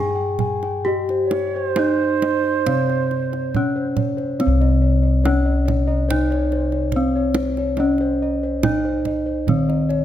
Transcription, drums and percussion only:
0.39 kendang slap soft
0.39 kendang low medium
0.63 kendang slap soft
1.09 kendang slap soft
1.31 kendang slap soft
1.31 kendang high medium
1.76 kendang slap soft
1.76 kendang high medium
2.22 kendang slap soft
2.22 kendang high medium
2.66 kendang low medium
2.89 kendang slap soft
3.11 kendang slap soft
3.33 kendang slap soft
3.55 kendang slap soft
3.55 kendang low medium
3.97 kendang slap soft
3.97 kendang low medium
4.18 kendang slap soft
4.40 kendang high soft
4.62 kendang slap soft
5.25 kendang slap soft
5.25 kendang high medium
5.68 kendang slap soft
5.68 kendang high soft
5.68 kendang low soft
6.10 kendang low medium
6.32 kendang slap soft
6.52 kendang slap soft
6.72 kendang slap soft
6.92 kendang slap soft
6.92 kendang low medium
7.34 kendang high medium
7.57 kendang slap soft
7.77 kendang high soft
7.98 kendang slap soft
8.63 kendang slap soft
8.63 kendang high medium
8.63 kendang low medium
9.05 kendang slap soft
9.05 kendang low medium
9.48 kendang low medium
9.70 kendang slap soft
9.90 kendang slap soft

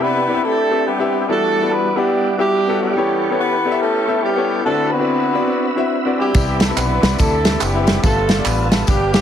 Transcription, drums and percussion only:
6.34 kick loud
6.34 ride medium
6.34 tambourine medium
6.60 snare loud
6.60 ride medium
6.60 tambourine medium
6.77 clap loud
6.77 ride medium
6.77 tambourine loud
7.03 snare loud
7.03 ride medium
7.03 tambourine medium
7.19 kick loud
7.19 ride medium
7.19 tambourine medium
7.45 snare loud
7.45 ride medium
7.45 tambourine medium
7.61 clap loud
7.61 ride medium
7.61 tambourine loud
7.87 snare loud
7.87 ride medium
7.87 tambourine medium
8.03 kick loud
8.03 ride medium
8.03 tambourine medium
8.29 snare loud
8.29 ride medium
8.29 tambourine medium
8.45 clap loud
8.45 ride medium
8.45 tambourine loud
8.72 snare loud
8.72 ride medium
8.72 tambourine medium
8.87 kick loud
8.87 ride medium
8.87 tambourine medium
9.14 snare loud
9.14 ride medium
9.14 tambourine medium

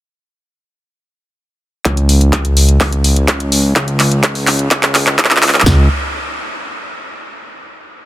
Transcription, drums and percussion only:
1.85 kick loud
1.85 clap soft
1.85 closed hi-hat medium
1.97 closed hi-hat soft
2.09 open hi-hat loud
2.21 closed hi-hat soft
2.33 kick loud
2.33 clap medium
2.33 closed hi-hat medium
2.45 closed hi-hat soft
2.57 open hi-hat loud
2.69 closed hi-hat soft
2.81 kick loud
2.81 clap medium
2.81 open hi-hat medium
2.92 closed hi-hat soft
3.04 open hi-hat loud
3.16 closed hi-hat soft
3.28 kick loud
3.28 clap medium
3.28 closed hi-hat loud
3.40 closed hi-hat soft
3.52 open hi-hat loud
3.76 kick loud
3.76 clap medium
3.76 closed hi-hat medium
3.88 closed hi-hat soft
4.00 clap medium
4.00 open hi-hat loud
4.12 closed hi-hat soft
4.23 kick loud
4.23 clap medium
4.23 closed hi-hat loud
4.35 open hi-hat medium
4.47 clap medium
4.47 open hi-hat loud
4.59 closed hi-hat soft
4.71 kick loud
4.71 clap medium
4.71 closed hi-hat medium
4.83 clap medium
4.83 closed hi-hat soft
4.95 clap loud
4.95 open hi-hat loud
5.07 clap medium
5.07 closed hi-hat soft
5.19 kick loud
5.19 clap loud
5.19 closed hi-hat loud
5.25 clap medium
5.31 clap loud
5.31 closed hi-hat soft
5.37 clap loud
5.42 clap loud
5.42 open hi-hat loud
5.48 clap loud
5.54 clap loud
5.60 clap loud
5.66 snare loud
5.66 floor tom loud

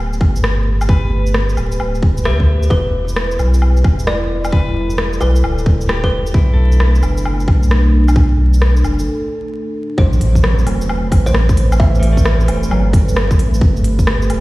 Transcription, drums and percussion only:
0.13 shaker soft
0.21 kick loud
0.21 low woodblock soft
0.36 shaker medium
0.44 cross-stick loud
0.81 low woodblock medium
0.81 shaker medium
0.89 kick loud
1.27 shaker medium
1.34 cross-stick loud
1.49 shaker soft
1.57 low woodblock soft
1.57 shaker soft
1.72 shaker medium
1.80 low woodblock soft
1.95 shaker soft
2.02 kick loud
2.17 shaker medium
2.25 cross-stick loud
2.40 kick medium
2.63 shaker soft
2.71 kick loud
3.08 shaker soft
3.16 cross-stick loud
3.31 shaker soft
3.39 low woodblock soft
3.39 shaker soft
3.54 shaker medium
3.62 low woodblock soft
3.77 shaker soft
3.84 kick loud
3.84 low woodblock soft
3.99 shaker medium
4.07 cross-stick loud
4.45 low woodblock medium
4.45 shaker medium
4.52 kick loud
4.90 shaker medium
4.98 cross-stick medium
5.13 shaker soft
5.21 low woodblock soft
5.21 shaker soft
5.36 shaker medium
5.44 low woodblock medium
5.58 shaker soft
5.66 kick loud
5.81 shaker medium
5.89 cross-stick loud
6.04 kick medium
6.27 shaker soft
6.34 kick loud
6.72 shaker medium
6.80 cross-stick medium
6.95 shaker soft
7.03 low woodblock soft
7.03 shaker soft
7.17 shaker medium
7.25 low woodblock medium
7.40 shaker soft
7.48 kick loud
7.48 low woodblock soft
7.63 shaker medium
7.71 cross-stick medium
8.08 low woodblock medium
8.08 shaker medium
8.16 kick loud
8.54 shaker medium
8.62 cross-stick loud
8.77 shaker soft
8.84 low woodblock soft
8.84 shaker soft
8.99 shaker medium
9.98 kick loud
10.13 shaker soft
10.21 open hi-hat medium
10.35 kick medium
10.35 shaker medium
10.44 cross-stick loud
10.59 shaker soft
10.67 open hi-hat medium
10.67 low woodblock soft
10.81 shaker medium
10.89 low woodblock medium
11.12 kick loud
11.12 open hi-hat medium
11.12 low woodblock soft
11.27 shaker medium
11.34 cross-stick loud
11.49 kick loud
11.49 shaker soft
11.57 open hi-hat medium
11.72 low woodblock medium
11.72 shaker medium
11.80 kick loud
11.95 shaker soft
12.03 open hi-hat medium
12.17 kick medium
12.17 shaker medium
12.25 cross-stick loud
12.40 shaker soft
12.48 open hi-hat medium
12.48 low woodblock soft
12.63 shaker medium
12.71 low woodblock medium
12.93 kick loud
12.93 open hi-hat medium
13.09 shaker medium
13.16 cross-stick loud
13.31 kick loud
13.31 shaker soft
13.39 open hi-hat medium
13.54 shaker medium
13.61 kick loud
13.77 shaker soft
13.84 open hi-hat medium
13.99 kick medium
13.99 shaker medium
14.07 cross-stick loud
14.22 shaker soft
14.30 open hi-hat medium
14.30 low woodblock soft

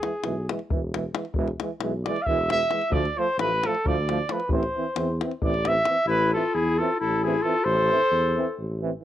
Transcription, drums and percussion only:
0.03 davul high medium
0.24 davul high medium
0.50 davul high medium
0.59 davul high soft
0.70 davul low loud
0.94 davul high medium
1.15 davul high medium
1.25 davul high soft
1.34 davul low medium
1.48 davul high soft
1.60 davul high medium
1.81 davul high medium
2.06 davul high medium
2.17 davul high soft
2.27 davul low medium
2.50 davul high medium
2.71 davul high medium
2.81 davul high soft
2.92 davul low loud
3.05 davul high soft
3.39 davul high medium
3.63 davul high medium
3.75 davul high soft
3.86 davul low loud
4.09 davul high medium
4.29 davul high medium
4.40 davul high soft
4.49 davul low loud
4.63 davul high soft
4.96 davul high medium
5.21 davul high medium
5.31 davul high soft
5.42 davul low medium
5.54 davul high soft
5.65 davul high medium
5.85 davul high medium

